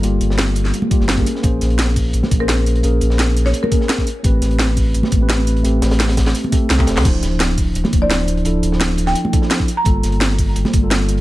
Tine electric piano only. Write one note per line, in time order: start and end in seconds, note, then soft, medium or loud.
0.00 0.02 G3 medium
0.00 0.88 G3 medium
0.00 0.03 A#3 medium
0.00 0.89 A#3 medium
0.00 0.04 F4 medium
0.00 0.89 F4 medium
0.00 1.28 A4 loud
0.04 0.90 G4 medium
0.90 1.15 G3 medium
0.90 1.15 A#3 medium
0.90 1.16 F4 medium
0.90 1.16 G4 medium
1.17 1.41 A#3 medium
1.17 1.42 C#4 medium
1.17 1.42 G#4 medium
1.17 1.42 A#4 loud
1.42 2.38 A#3 medium
1.42 2.38 C#4 medium
1.42 2.38 G#4 medium
1.42 2.39 C5 loud
2.39 2.81 A#3 medium
2.39 2.82 C#4 medium
2.39 2.82 G#4 medium
2.39 2.83 C5 medium
2.83 3.69 A#3 medium
2.83 3.69 C#4 medium
2.83 3.70 G#4 medium
2.83 3.70 A#4 medium
3.71 4.06 A#3 medium
3.71 4.06 C#4 medium
3.71 4.06 G#4 medium
3.71 4.06 A#4 medium
4.23 5.18 A3 medium
4.23 5.19 C4 medium
4.23 5.19 G4 medium
4.23 5.20 B4 loud
5.20 5.62 A3 medium
5.20 5.63 C4 medium
5.20 5.63 G4 medium
5.20 5.63 B4 medium
5.63 6.50 A3 medium
5.63 6.50 C4 medium
5.63 6.51 G4 medium
5.63 6.51 A4 medium
6.52 6.77 A3 medium
6.52 6.77 C4 medium
6.52 6.77 G4 medium
6.52 6.77 A4 medium
6.78 7.03 A3 medium
6.78 7.03 C4 medium
6.78 7.03 G4 medium
6.78 7.03 A4 loud
7.04 7.99 F3 medium
7.04 8.00 D4 medium
7.04 8.00 E4 medium
7.04 8.00 C5 loud
8.00 8.43 F3 medium
8.00 8.43 D4 medium
8.00 8.44 E4 medium
8.00 8.44 C5 medium
8.44 9.30 F3 medium
8.44 9.31 D4 medium
8.44 9.31 E4 medium
8.44 9.32 A4 medium
9.33 9.67 F3 medium
9.33 9.67 D4 medium
9.33 9.67 E4 medium
9.33 9.68 A4 medium
9.84 10.80 G3 medium
9.84 10.80 A#3 medium
9.84 10.80 F4 medium
9.84 10.81 A4 loud
10.81 11.21 G3 medium
10.81 11.21 A#3 medium
10.81 11.21 F4 medium
10.81 11.21 A4 medium